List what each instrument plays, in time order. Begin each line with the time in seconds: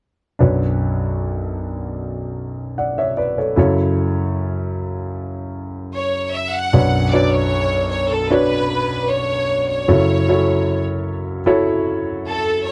0.39 grand piano B1 F#2 D4 F#4 B4 C#5
2.78 grand piano D5 F#5
2.98 grand piano C#5 E5
3.17 grand piano B4 D5
3.38 grand piano A4 C#5
3.56 grand piano F#2 C#3 E4 F#4 A4 C#5
5.95 violin section C#5
6.34 violin section E5
6.53 violin section F#5
6.73 grand piano B1 F#2 D4 F#4 B4 C#5
7.12 grand piano D4 F#4 B4 C#5, violin section D5
7.31 violin section C#5
7.90 violin section C#5
8.10 violin section A4
8.30 grand piano D4 F#4 B4 C#5, violin section B4
9.10 violin section C#5
9.69 violin section C#5
9.88 grand piano F#2 C#3 E4 F#4 A4 C#5
10.28 grand piano E4 F#4 A4 C#5
11.46 grand piano E4 F#4 A4 C#5
12.28 violin section A4
12.67 violin section C#5